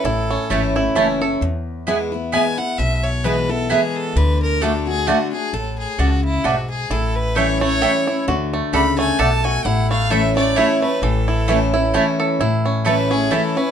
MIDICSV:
0, 0, Header, 1, 6, 480
1, 0, Start_track
1, 0, Key_signature, 3, "major"
1, 0, Tempo, 457666
1, 47, Time_signature, 3, 2, 24, 8
1, 14379, End_track
2, 0, Start_track
2, 0, Title_t, "Fiddle"
2, 0, Program_c, 0, 110
2, 46, Note_on_c, 0, 69, 84
2, 1006, Note_off_c, 0, 69, 0
2, 2444, Note_on_c, 0, 80, 91
2, 2705, Note_on_c, 0, 78, 94
2, 2721, Note_off_c, 0, 80, 0
2, 2920, Note_on_c, 0, 76, 96
2, 2935, Note_off_c, 0, 78, 0
2, 3181, Note_on_c, 0, 73, 90
2, 3197, Note_off_c, 0, 76, 0
2, 3407, Note_on_c, 0, 71, 91
2, 3423, Note_off_c, 0, 73, 0
2, 3668, Note_on_c, 0, 69, 103
2, 3684, Note_off_c, 0, 71, 0
2, 3891, Note_on_c, 0, 68, 83
2, 3906, Note_off_c, 0, 69, 0
2, 4154, Note_on_c, 0, 69, 94
2, 4170, Note_off_c, 0, 68, 0
2, 4370, Note_on_c, 0, 71, 89
2, 4386, Note_off_c, 0, 69, 0
2, 4631, Note_off_c, 0, 71, 0
2, 4639, Note_on_c, 0, 70, 89
2, 4847, Note_on_c, 0, 69, 82
2, 4862, Note_off_c, 0, 70, 0
2, 5105, Note_off_c, 0, 69, 0
2, 5111, Note_on_c, 0, 68, 101
2, 5323, Note_on_c, 0, 66, 85
2, 5338, Note_off_c, 0, 68, 0
2, 5579, Note_off_c, 0, 66, 0
2, 5585, Note_on_c, 0, 68, 88
2, 5805, Note_on_c, 0, 69, 82
2, 5821, Note_off_c, 0, 68, 0
2, 6062, Note_off_c, 0, 69, 0
2, 6068, Note_on_c, 0, 68, 80
2, 6287, Note_on_c, 0, 66, 77
2, 6303, Note_off_c, 0, 68, 0
2, 6543, Note_off_c, 0, 66, 0
2, 6550, Note_on_c, 0, 64, 91
2, 6768, Note_on_c, 0, 66, 81
2, 6784, Note_off_c, 0, 64, 0
2, 7021, Note_off_c, 0, 66, 0
2, 7028, Note_on_c, 0, 68, 97
2, 7248, Note_on_c, 0, 69, 81
2, 7263, Note_off_c, 0, 68, 0
2, 7505, Note_on_c, 0, 71, 90
2, 7521, Note_off_c, 0, 69, 0
2, 7729, Note_on_c, 0, 73, 90
2, 7744, Note_off_c, 0, 71, 0
2, 7979, Note_off_c, 0, 73, 0
2, 7985, Note_on_c, 0, 73, 112
2, 8640, Note_off_c, 0, 73, 0
2, 9166, Note_on_c, 0, 83, 98
2, 9410, Note_off_c, 0, 83, 0
2, 9424, Note_on_c, 0, 80, 100
2, 9640, Note_on_c, 0, 81, 102
2, 9656, Note_off_c, 0, 80, 0
2, 9904, Note_on_c, 0, 80, 101
2, 9919, Note_off_c, 0, 81, 0
2, 10123, Note_on_c, 0, 78, 90
2, 10139, Note_off_c, 0, 80, 0
2, 10379, Note_off_c, 0, 78, 0
2, 10385, Note_on_c, 0, 77, 94
2, 10600, Note_on_c, 0, 76, 101
2, 10616, Note_off_c, 0, 77, 0
2, 10862, Note_off_c, 0, 76, 0
2, 10868, Note_on_c, 0, 74, 92
2, 11079, Note_on_c, 0, 73, 87
2, 11095, Note_off_c, 0, 74, 0
2, 11341, Note_off_c, 0, 73, 0
2, 11348, Note_on_c, 0, 71, 91
2, 11561, Note_on_c, 0, 69, 88
2, 11576, Note_off_c, 0, 71, 0
2, 12522, Note_off_c, 0, 69, 0
2, 13491, Note_on_c, 0, 71, 84
2, 13748, Note_on_c, 0, 68, 97
2, 13764, Note_off_c, 0, 71, 0
2, 13970, Note_on_c, 0, 69, 81
2, 13986, Note_off_c, 0, 68, 0
2, 14233, Note_on_c, 0, 71, 85
2, 14249, Note_off_c, 0, 69, 0
2, 14379, Note_off_c, 0, 71, 0
2, 14379, End_track
3, 0, Start_track
3, 0, Title_t, "Mandolin"
3, 0, Program_c, 1, 25
3, 523, Note_on_c, 1, 57, 82
3, 530, Note_on_c, 1, 64, 90
3, 530, Note_on_c, 1, 73, 90
3, 536, Note_on_c, 1, 81, 83
3, 629, Note_off_c, 1, 57, 0
3, 632, Note_off_c, 1, 64, 0
3, 632, Note_off_c, 1, 73, 0
3, 635, Note_off_c, 1, 81, 0
3, 999, Note_on_c, 1, 57, 101
3, 1003, Note_on_c, 1, 64, 97
3, 1007, Note_on_c, 1, 73, 101
3, 1010, Note_on_c, 1, 81, 111
3, 1107, Note_off_c, 1, 57, 0
3, 1109, Note_off_c, 1, 64, 0
3, 1111, Note_off_c, 1, 73, 0
3, 1112, Note_off_c, 1, 81, 0
3, 1958, Note_on_c, 1, 59, 86
3, 1961, Note_on_c, 1, 64, 85
3, 1965, Note_on_c, 1, 71, 92
3, 1969, Note_on_c, 1, 80, 91
3, 2066, Note_off_c, 1, 59, 0
3, 2067, Note_off_c, 1, 64, 0
3, 2069, Note_off_c, 1, 71, 0
3, 2071, Note_off_c, 1, 80, 0
3, 2436, Note_on_c, 1, 59, 97
3, 2440, Note_on_c, 1, 64, 105
3, 2446, Note_on_c, 1, 71, 101
3, 2447, Note_on_c, 1, 80, 111
3, 2545, Note_off_c, 1, 59, 0
3, 2547, Note_off_c, 1, 64, 0
3, 2550, Note_off_c, 1, 71, 0
3, 2550, Note_off_c, 1, 80, 0
3, 3397, Note_on_c, 1, 59, 78
3, 3400, Note_on_c, 1, 64, 83
3, 3403, Note_on_c, 1, 71, 91
3, 3408, Note_on_c, 1, 80, 93
3, 3505, Note_off_c, 1, 59, 0
3, 3506, Note_off_c, 1, 64, 0
3, 3508, Note_off_c, 1, 71, 0
3, 3511, Note_off_c, 1, 80, 0
3, 3874, Note_on_c, 1, 59, 92
3, 3879, Note_on_c, 1, 64, 105
3, 3883, Note_on_c, 1, 71, 90
3, 3884, Note_on_c, 1, 80, 112
3, 3983, Note_off_c, 1, 59, 0
3, 3986, Note_off_c, 1, 64, 0
3, 3988, Note_off_c, 1, 71, 0
3, 3988, Note_off_c, 1, 80, 0
3, 4838, Note_on_c, 1, 57, 88
3, 4841, Note_on_c, 1, 66, 98
3, 4844, Note_on_c, 1, 74, 96
3, 4848, Note_on_c, 1, 81, 88
3, 4945, Note_off_c, 1, 57, 0
3, 4946, Note_off_c, 1, 66, 0
3, 4948, Note_off_c, 1, 74, 0
3, 4950, Note_off_c, 1, 81, 0
3, 5314, Note_on_c, 1, 57, 97
3, 5319, Note_on_c, 1, 66, 98
3, 5321, Note_on_c, 1, 74, 99
3, 5327, Note_on_c, 1, 81, 111
3, 5423, Note_off_c, 1, 57, 0
3, 5425, Note_off_c, 1, 66, 0
3, 5426, Note_off_c, 1, 74, 0
3, 5429, Note_off_c, 1, 81, 0
3, 6275, Note_on_c, 1, 57, 75
3, 6278, Note_on_c, 1, 66, 85
3, 6281, Note_on_c, 1, 74, 92
3, 6283, Note_on_c, 1, 81, 94
3, 6383, Note_off_c, 1, 57, 0
3, 6384, Note_off_c, 1, 66, 0
3, 6386, Note_off_c, 1, 74, 0
3, 6387, Note_off_c, 1, 81, 0
3, 6753, Note_on_c, 1, 57, 91
3, 6757, Note_on_c, 1, 66, 96
3, 6761, Note_on_c, 1, 74, 100
3, 6764, Note_on_c, 1, 81, 106
3, 6862, Note_off_c, 1, 57, 0
3, 6864, Note_off_c, 1, 66, 0
3, 6866, Note_off_c, 1, 74, 0
3, 6867, Note_off_c, 1, 81, 0
3, 7710, Note_on_c, 1, 57, 86
3, 7715, Note_on_c, 1, 64, 87
3, 7718, Note_on_c, 1, 73, 84
3, 7721, Note_on_c, 1, 79, 94
3, 7820, Note_off_c, 1, 57, 0
3, 7822, Note_off_c, 1, 64, 0
3, 7824, Note_off_c, 1, 73, 0
3, 7826, Note_off_c, 1, 79, 0
3, 8192, Note_on_c, 1, 57, 92
3, 8196, Note_on_c, 1, 64, 107
3, 8198, Note_on_c, 1, 73, 94
3, 8202, Note_on_c, 1, 79, 99
3, 8301, Note_off_c, 1, 57, 0
3, 8303, Note_off_c, 1, 64, 0
3, 8304, Note_off_c, 1, 73, 0
3, 8306, Note_off_c, 1, 79, 0
3, 9154, Note_on_c, 1, 57, 84
3, 9159, Note_on_c, 1, 66, 83
3, 9161, Note_on_c, 1, 74, 86
3, 9163, Note_on_c, 1, 81, 90
3, 9261, Note_off_c, 1, 57, 0
3, 9264, Note_off_c, 1, 66, 0
3, 9265, Note_off_c, 1, 74, 0
3, 9266, Note_off_c, 1, 81, 0
3, 9632, Note_on_c, 1, 57, 91
3, 9635, Note_on_c, 1, 66, 100
3, 9640, Note_on_c, 1, 74, 99
3, 9643, Note_on_c, 1, 81, 115
3, 9741, Note_off_c, 1, 57, 0
3, 9742, Note_off_c, 1, 66, 0
3, 9744, Note_off_c, 1, 74, 0
3, 9746, Note_off_c, 1, 81, 0
3, 10593, Note_on_c, 1, 57, 97
3, 10598, Note_on_c, 1, 64, 90
3, 10602, Note_on_c, 1, 73, 88
3, 10602, Note_on_c, 1, 81, 102
3, 10701, Note_off_c, 1, 57, 0
3, 10704, Note_off_c, 1, 64, 0
3, 10705, Note_off_c, 1, 73, 0
3, 10705, Note_off_c, 1, 81, 0
3, 11075, Note_on_c, 1, 57, 95
3, 11076, Note_on_c, 1, 64, 107
3, 11080, Note_on_c, 1, 73, 119
3, 11083, Note_on_c, 1, 81, 106
3, 11182, Note_off_c, 1, 57, 0
3, 11183, Note_off_c, 1, 64, 0
3, 11185, Note_off_c, 1, 73, 0
3, 11186, Note_off_c, 1, 81, 0
3, 12036, Note_on_c, 1, 57, 82
3, 12039, Note_on_c, 1, 64, 94
3, 12041, Note_on_c, 1, 73, 96
3, 12044, Note_on_c, 1, 81, 89
3, 12143, Note_off_c, 1, 57, 0
3, 12145, Note_off_c, 1, 64, 0
3, 12146, Note_off_c, 1, 73, 0
3, 12147, Note_off_c, 1, 81, 0
3, 12519, Note_on_c, 1, 57, 93
3, 12522, Note_on_c, 1, 64, 98
3, 12526, Note_on_c, 1, 73, 113
3, 12528, Note_on_c, 1, 81, 112
3, 12625, Note_off_c, 1, 57, 0
3, 12626, Note_off_c, 1, 64, 0
3, 12628, Note_off_c, 1, 73, 0
3, 12629, Note_off_c, 1, 81, 0
3, 13473, Note_on_c, 1, 57, 82
3, 13477, Note_on_c, 1, 64, 83
3, 13479, Note_on_c, 1, 73, 84
3, 13484, Note_on_c, 1, 81, 98
3, 13582, Note_off_c, 1, 57, 0
3, 13585, Note_off_c, 1, 64, 0
3, 13586, Note_off_c, 1, 73, 0
3, 13588, Note_off_c, 1, 81, 0
3, 13954, Note_on_c, 1, 57, 86
3, 13957, Note_on_c, 1, 64, 95
3, 13961, Note_on_c, 1, 73, 92
3, 13964, Note_on_c, 1, 81, 92
3, 14064, Note_off_c, 1, 57, 0
3, 14065, Note_off_c, 1, 64, 0
3, 14067, Note_off_c, 1, 73, 0
3, 14068, Note_off_c, 1, 81, 0
3, 14379, End_track
4, 0, Start_track
4, 0, Title_t, "Five-string banjo"
4, 0, Program_c, 2, 105
4, 55, Note_on_c, 2, 64, 63
4, 320, Note_on_c, 2, 61, 61
4, 531, Note_on_c, 2, 57, 55
4, 742, Note_off_c, 2, 64, 0
4, 797, Note_on_c, 2, 64, 64
4, 968, Note_off_c, 2, 61, 0
4, 1008, Note_on_c, 2, 61, 67
4, 1220, Note_off_c, 2, 57, 0
4, 1274, Note_on_c, 2, 69, 60
4, 1447, Note_off_c, 2, 64, 0
4, 1487, Note_off_c, 2, 61, 0
4, 1489, Note_off_c, 2, 69, 0
4, 7242, Note_on_c, 2, 64, 64
4, 7721, Note_on_c, 2, 69, 54
4, 7933, Note_off_c, 2, 64, 0
4, 7985, Note_on_c, 2, 57, 74
4, 8195, Note_off_c, 2, 69, 0
4, 8199, Note_on_c, 2, 69, 68
4, 8468, Note_on_c, 2, 64, 57
4, 8683, Note_off_c, 2, 64, 0
4, 8687, Note_on_c, 2, 66, 61
4, 8947, Note_off_c, 2, 57, 0
4, 8951, Note_on_c, 2, 57, 62
4, 9161, Note_off_c, 2, 69, 0
4, 9165, Note_on_c, 2, 69, 60
4, 9375, Note_off_c, 2, 66, 0
4, 9421, Note_off_c, 2, 57, 0
4, 9425, Note_on_c, 2, 57, 76
4, 9639, Note_off_c, 2, 69, 0
4, 9644, Note_on_c, 2, 69, 69
4, 9910, Note_on_c, 2, 66, 61
4, 10124, Note_off_c, 2, 66, 0
4, 10128, Note_on_c, 2, 64, 64
4, 10387, Note_off_c, 2, 57, 0
4, 10391, Note_on_c, 2, 57, 65
4, 10603, Note_off_c, 2, 69, 0
4, 10607, Note_on_c, 2, 69, 61
4, 10870, Note_off_c, 2, 57, 0
4, 10874, Note_on_c, 2, 57, 78
4, 11090, Note_off_c, 2, 64, 0
4, 11094, Note_on_c, 2, 64, 65
4, 11348, Note_off_c, 2, 57, 0
4, 11352, Note_on_c, 2, 57, 59
4, 11567, Note_on_c, 2, 52, 67
4, 11825, Note_off_c, 2, 64, 0
4, 11830, Note_on_c, 2, 64, 57
4, 12034, Note_off_c, 2, 52, 0
4, 12046, Note_on_c, 2, 52, 58
4, 12076, Note_off_c, 2, 69, 0
4, 12297, Note_off_c, 2, 64, 0
4, 12309, Note_on_c, 2, 64, 67
4, 12530, Note_on_c, 2, 61, 66
4, 12736, Note_off_c, 2, 52, 0
4, 12791, Note_on_c, 2, 69, 61
4, 12820, Note_off_c, 2, 57, 0
4, 12962, Note_off_c, 2, 64, 0
4, 13006, Note_off_c, 2, 69, 0
4, 13007, Note_off_c, 2, 61, 0
4, 13011, Note_on_c, 2, 64, 64
4, 13273, Note_on_c, 2, 61, 55
4, 13486, Note_on_c, 2, 69, 54
4, 13700, Note_off_c, 2, 64, 0
4, 13737, Note_off_c, 2, 61, 0
4, 13749, Note_on_c, 2, 61, 63
4, 13966, Note_on_c, 2, 64, 61
4, 14178, Note_off_c, 2, 69, 0
4, 14219, Note_off_c, 2, 61, 0
4, 14231, Note_on_c, 2, 61, 60
4, 14379, Note_off_c, 2, 61, 0
4, 14379, Note_off_c, 2, 64, 0
4, 14379, End_track
5, 0, Start_track
5, 0, Title_t, "Steel-string acoustic guitar"
5, 0, Program_c, 3, 25
5, 49, Note_on_c, 3, 45, 103
5, 526, Note_on_c, 3, 52, 87
5, 533, Note_on_c, 3, 57, 103
5, 542, Note_on_c, 3, 61, 99
5, 548, Note_on_c, 3, 64, 99
5, 779, Note_off_c, 3, 52, 0
5, 779, Note_off_c, 3, 64, 0
5, 783, Note_off_c, 3, 57, 0
5, 787, Note_off_c, 3, 61, 0
5, 792, Note_on_c, 3, 64, 59
5, 813, Note_on_c, 3, 61, 49
5, 965, Note_off_c, 3, 45, 0
5, 999, Note_off_c, 3, 64, 0
5, 1008, Note_on_c, 3, 52, 74
5, 1009, Note_off_c, 3, 61, 0
5, 1016, Note_on_c, 3, 57, 79
5, 1023, Note_on_c, 3, 61, 85
5, 1028, Note_on_c, 3, 64, 88
5, 1256, Note_off_c, 3, 64, 0
5, 1260, Note_off_c, 3, 52, 0
5, 1265, Note_off_c, 3, 57, 0
5, 1268, Note_off_c, 3, 61, 0
5, 1269, Note_on_c, 3, 64, 54
5, 1290, Note_on_c, 3, 61, 44
5, 1477, Note_off_c, 3, 64, 0
5, 1488, Note_off_c, 3, 61, 0
5, 1491, Note_on_c, 3, 40, 94
5, 1959, Note_on_c, 3, 52, 96
5, 1969, Note_on_c, 3, 56, 98
5, 1974, Note_on_c, 3, 59, 97
5, 1982, Note_on_c, 3, 64, 105
5, 2210, Note_off_c, 3, 64, 0
5, 2216, Note_off_c, 3, 52, 0
5, 2220, Note_off_c, 3, 56, 0
5, 2222, Note_on_c, 3, 64, 54
5, 2223, Note_off_c, 3, 59, 0
5, 2245, Note_on_c, 3, 59, 54
5, 2405, Note_off_c, 3, 40, 0
5, 2434, Note_off_c, 3, 64, 0
5, 2441, Note_on_c, 3, 52, 74
5, 2445, Note_off_c, 3, 59, 0
5, 2449, Note_on_c, 3, 56, 84
5, 2457, Note_on_c, 3, 59, 89
5, 2463, Note_on_c, 3, 64, 94
5, 2693, Note_off_c, 3, 64, 0
5, 2696, Note_off_c, 3, 52, 0
5, 2700, Note_off_c, 3, 56, 0
5, 2704, Note_off_c, 3, 59, 0
5, 2705, Note_on_c, 3, 64, 58
5, 2724, Note_on_c, 3, 59, 41
5, 2915, Note_off_c, 3, 64, 0
5, 2924, Note_off_c, 3, 59, 0
5, 2929, Note_on_c, 3, 47, 92
5, 3401, Note_on_c, 3, 52, 87
5, 3410, Note_on_c, 3, 56, 94
5, 3418, Note_on_c, 3, 59, 97
5, 3423, Note_on_c, 3, 64, 101
5, 3649, Note_off_c, 3, 64, 0
5, 3656, Note_off_c, 3, 52, 0
5, 3661, Note_off_c, 3, 56, 0
5, 3662, Note_on_c, 3, 64, 62
5, 3665, Note_off_c, 3, 59, 0
5, 3684, Note_on_c, 3, 59, 50
5, 3844, Note_off_c, 3, 47, 0
5, 3873, Note_off_c, 3, 64, 0
5, 3884, Note_off_c, 3, 59, 0
5, 3884, Note_on_c, 3, 52, 77
5, 3892, Note_on_c, 3, 56, 84
5, 3900, Note_on_c, 3, 59, 88
5, 3905, Note_on_c, 3, 64, 87
5, 4343, Note_off_c, 3, 52, 0
5, 4347, Note_off_c, 3, 56, 0
5, 4351, Note_off_c, 3, 59, 0
5, 4353, Note_off_c, 3, 64, 0
5, 4368, Note_on_c, 3, 50, 99
5, 4829, Note_off_c, 3, 50, 0
5, 4842, Note_on_c, 3, 50, 93
5, 4850, Note_on_c, 3, 57, 94
5, 4857, Note_on_c, 3, 62, 93
5, 4863, Note_on_c, 3, 66, 105
5, 5094, Note_off_c, 3, 66, 0
5, 5096, Note_off_c, 3, 50, 0
5, 5100, Note_off_c, 3, 57, 0
5, 5104, Note_off_c, 3, 62, 0
5, 5107, Note_on_c, 3, 66, 59
5, 5127, Note_on_c, 3, 62, 48
5, 5315, Note_off_c, 3, 66, 0
5, 5320, Note_on_c, 3, 50, 91
5, 5325, Note_off_c, 3, 62, 0
5, 5331, Note_on_c, 3, 57, 73
5, 5338, Note_on_c, 3, 62, 85
5, 5342, Note_on_c, 3, 66, 84
5, 5575, Note_off_c, 3, 50, 0
5, 5576, Note_off_c, 3, 66, 0
5, 5580, Note_off_c, 3, 57, 0
5, 5584, Note_off_c, 3, 62, 0
5, 5588, Note_on_c, 3, 66, 51
5, 5609, Note_on_c, 3, 62, 44
5, 5796, Note_off_c, 3, 66, 0
5, 5806, Note_off_c, 3, 62, 0
5, 5806, Note_on_c, 3, 45, 96
5, 6284, Note_off_c, 3, 45, 0
5, 6288, Note_on_c, 3, 49, 98
5, 6744, Note_off_c, 3, 49, 0
5, 6765, Note_on_c, 3, 44, 75
5, 7222, Note_off_c, 3, 44, 0
5, 7247, Note_on_c, 3, 45, 94
5, 7718, Note_on_c, 3, 52, 86
5, 7728, Note_on_c, 3, 55, 90
5, 7735, Note_on_c, 3, 61, 102
5, 7741, Note_on_c, 3, 64, 99
5, 7970, Note_off_c, 3, 64, 0
5, 7974, Note_off_c, 3, 52, 0
5, 7978, Note_off_c, 3, 55, 0
5, 7982, Note_off_c, 3, 61, 0
5, 7983, Note_on_c, 3, 64, 57
5, 8002, Note_on_c, 3, 61, 44
5, 8161, Note_off_c, 3, 45, 0
5, 8192, Note_off_c, 3, 64, 0
5, 8197, Note_on_c, 3, 52, 86
5, 8202, Note_off_c, 3, 61, 0
5, 8208, Note_on_c, 3, 55, 76
5, 8215, Note_on_c, 3, 61, 91
5, 8222, Note_on_c, 3, 64, 84
5, 8447, Note_off_c, 3, 64, 0
5, 8453, Note_off_c, 3, 52, 0
5, 8458, Note_off_c, 3, 55, 0
5, 8460, Note_on_c, 3, 64, 56
5, 8462, Note_off_c, 3, 61, 0
5, 8482, Note_on_c, 3, 61, 43
5, 8671, Note_off_c, 3, 64, 0
5, 8681, Note_on_c, 3, 50, 103
5, 8682, Note_off_c, 3, 61, 0
5, 9160, Note_on_c, 3, 49, 96
5, 9598, Note_off_c, 3, 50, 0
5, 9619, Note_off_c, 3, 49, 0
5, 9643, Note_on_c, 3, 47, 87
5, 10101, Note_off_c, 3, 47, 0
5, 10121, Note_on_c, 3, 45, 94
5, 10595, Note_on_c, 3, 52, 98
5, 10606, Note_on_c, 3, 57, 99
5, 10609, Note_on_c, 3, 61, 111
5, 10617, Note_on_c, 3, 64, 114
5, 10850, Note_off_c, 3, 64, 0
5, 10852, Note_off_c, 3, 52, 0
5, 10857, Note_off_c, 3, 57, 0
5, 10859, Note_off_c, 3, 61, 0
5, 10863, Note_on_c, 3, 64, 64
5, 10884, Note_on_c, 3, 61, 48
5, 11038, Note_off_c, 3, 45, 0
5, 11072, Note_off_c, 3, 64, 0
5, 11078, Note_on_c, 3, 52, 82
5, 11083, Note_off_c, 3, 61, 0
5, 11089, Note_on_c, 3, 57, 82
5, 11094, Note_on_c, 3, 61, 88
5, 11102, Note_on_c, 3, 64, 98
5, 11332, Note_off_c, 3, 64, 0
5, 11333, Note_off_c, 3, 52, 0
5, 11339, Note_off_c, 3, 57, 0
5, 11341, Note_off_c, 3, 61, 0
5, 11345, Note_on_c, 3, 64, 59
5, 11367, Note_on_c, 3, 61, 44
5, 11553, Note_off_c, 3, 64, 0
5, 11564, Note_off_c, 3, 61, 0
5, 11566, Note_on_c, 3, 45, 99
5, 12039, Note_on_c, 3, 52, 100
5, 12049, Note_on_c, 3, 57, 96
5, 12055, Note_on_c, 3, 61, 105
5, 12061, Note_on_c, 3, 64, 102
5, 12294, Note_off_c, 3, 52, 0
5, 12294, Note_off_c, 3, 64, 0
5, 12299, Note_off_c, 3, 57, 0
5, 12302, Note_off_c, 3, 61, 0
5, 12307, Note_on_c, 3, 64, 62
5, 12328, Note_on_c, 3, 61, 53
5, 12482, Note_off_c, 3, 45, 0
5, 12514, Note_off_c, 3, 64, 0
5, 12524, Note_on_c, 3, 52, 80
5, 12525, Note_off_c, 3, 61, 0
5, 12532, Note_on_c, 3, 57, 82
5, 12540, Note_on_c, 3, 61, 85
5, 12548, Note_on_c, 3, 64, 86
5, 12983, Note_off_c, 3, 52, 0
5, 12986, Note_off_c, 3, 57, 0
5, 12990, Note_off_c, 3, 61, 0
5, 12994, Note_off_c, 3, 64, 0
5, 13012, Note_on_c, 3, 45, 95
5, 13482, Note_on_c, 3, 52, 89
5, 13491, Note_on_c, 3, 57, 94
5, 13497, Note_on_c, 3, 61, 98
5, 13503, Note_on_c, 3, 64, 97
5, 13734, Note_off_c, 3, 64, 0
5, 13737, Note_off_c, 3, 52, 0
5, 13741, Note_off_c, 3, 57, 0
5, 13744, Note_off_c, 3, 61, 0
5, 13746, Note_on_c, 3, 64, 59
5, 13768, Note_on_c, 3, 61, 47
5, 13926, Note_off_c, 3, 45, 0
5, 13956, Note_off_c, 3, 64, 0
5, 13962, Note_on_c, 3, 52, 83
5, 13967, Note_off_c, 3, 61, 0
5, 13971, Note_on_c, 3, 57, 72
5, 13979, Note_on_c, 3, 61, 79
5, 13984, Note_on_c, 3, 64, 90
5, 14209, Note_off_c, 3, 64, 0
5, 14218, Note_off_c, 3, 52, 0
5, 14222, Note_off_c, 3, 57, 0
5, 14222, Note_on_c, 3, 64, 52
5, 14226, Note_off_c, 3, 61, 0
5, 14245, Note_on_c, 3, 61, 42
5, 14379, Note_off_c, 3, 61, 0
5, 14379, Note_off_c, 3, 64, 0
5, 14379, End_track
6, 0, Start_track
6, 0, Title_t, "Upright bass"
6, 0, Program_c, 4, 32
6, 45, Note_on_c, 4, 33, 94
6, 375, Note_off_c, 4, 33, 0
6, 528, Note_on_c, 4, 32, 89
6, 935, Note_off_c, 4, 32, 0
6, 1001, Note_on_c, 4, 30, 79
6, 1412, Note_off_c, 4, 30, 0
6, 1482, Note_on_c, 4, 40, 100
6, 2470, Note_off_c, 4, 40, 0
6, 2920, Note_on_c, 4, 35, 90
6, 3908, Note_off_c, 4, 35, 0
6, 4359, Note_on_c, 4, 38, 97
6, 5347, Note_off_c, 4, 38, 0
6, 5800, Note_on_c, 4, 33, 84
6, 6130, Note_off_c, 4, 33, 0
6, 6277, Note_on_c, 4, 37, 92
6, 6688, Note_off_c, 4, 37, 0
6, 6758, Note_on_c, 4, 35, 83
6, 7168, Note_off_c, 4, 35, 0
6, 7238, Note_on_c, 4, 33, 96
6, 8226, Note_off_c, 4, 33, 0
6, 8681, Note_on_c, 4, 38, 100
6, 9010, Note_off_c, 4, 38, 0
6, 9155, Note_on_c, 4, 37, 88
6, 9566, Note_off_c, 4, 37, 0
6, 9641, Note_on_c, 4, 35, 82
6, 10049, Note_off_c, 4, 35, 0
6, 10120, Note_on_c, 4, 33, 99
6, 11108, Note_off_c, 4, 33, 0
6, 11556, Note_on_c, 4, 33, 102
6, 12546, Note_off_c, 4, 33, 0
6, 13000, Note_on_c, 4, 33, 89
6, 13990, Note_off_c, 4, 33, 0
6, 14379, End_track
0, 0, End_of_file